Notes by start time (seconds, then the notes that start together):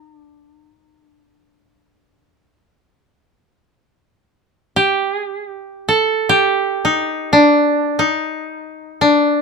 Already playing: D#4
0.07 D4
0.64 D#4
0.97 D4
4.76 G4
5.35 G#4
5.46 G4
5.89 A4
6.29 G4
6.85 D#4
7.33 D4
7.99 D#4
9.01 D4